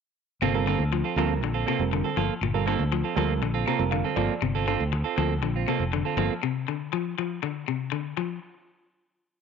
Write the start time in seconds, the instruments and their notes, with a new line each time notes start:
0.42 fingered electric bass G1, clean electric guitar C3 A#3 C4 F4 A4
0.54 reed electric piano G3 C4 F4 A#4, clean electric guitar C4 F4 A4
0.67 clean electric guitar D3 A#3 C4 F4 A4
0.79 fingered electric bass D2
0.93 clean electric guitar F3
1.04 clean electric guitar C4 F4 A4
1.16 fingered electric bass D2, clean electric guitar F3 A#3 C4 F4 A4, reed electric piano G3 C4 F4 A#4
1.41 fingered electric bass A#1, clean electric guitar D3
1.54 clean electric guitar C4 F4 A4
1.66 clean electric guitar C3 A#3 C4 F4 A4
1.79 fingered electric bass F1, reed electric piano G3 C4 F4 A#4
1.93 clean electric guitar D3
2.04 clean electric guitar C4 A4, muted clean electric guitar stroke
2.17 fingered electric bass G1, clean electric guitar F3 A#3 F4 A4
2.41 fingered electric bass G1, clean electric guitar A#2
2.54 reed electric piano G3 C4 F4 A#4, clean electric guitar C4 F4 A4
2.66 clean electric guitar D3 A#3 C4 F4 A4
2.79 fingered electric bass D2
2.92 clean electric guitar F3
3.04 clean electric guitar C4 F4 A4
3.16 fingered electric bass D2, clean electric guitar F3 A#3 C4 F4 A4, reed electric piano G3 C4 F4 A#4
3.42 fingered electric bass A#1, clean electric guitar D3
3.54 clean electric guitar C4 F4 A4
3.67 clean electric guitar C3 A#3 C4 F4 A4, reed electric piano A#5
3.79 fingered electric bass F1, reed electric piano G3 C4 F4 A#4
3.91 clean electric guitar D3, reed electric piano F5
4.04 clean electric guitar C4 F4 A4
4.16 fingered electric bass G1, clean electric guitar F3 A#3 C4 F4 A4, reed electric piano D5
4.42 fingered electric bass G1, clean electric guitar C3
4.55 clean electric guitar C4 F4 A4
4.67 clean electric guitar D3 C4 F4 A4
4.80 fingered electric bass D2
4.93 muted clean electric guitar stroke
5.04 clean electric guitar C4 F4 A4
5.17 fingered electric bass D2, clean electric guitar F3 A#3 C4 A4, muted clean electric guitar stroke
5.43 fingered electric bass A#1, clean electric guitar D3
5.56 clean electric guitar C4 F4
5.68 clean electric guitar C3 A#3 C4 F4 A4
5.80 fingered electric bass F1
5.93 clean electric guitar D3
6.05 clean electric guitar C4 F4 A4
6.17 fingered electric bass G1, clean electric guitar F3 A#3 C4 F4 A4
6.43 clean electric guitar C3
6.68 clean electric guitar D3
6.93 clean electric guitar F3
7.18 clean electric guitar F3
7.43 clean electric guitar D3
7.68 clean electric guitar C3
7.92 clean electric guitar D3
8.17 clean electric guitar F3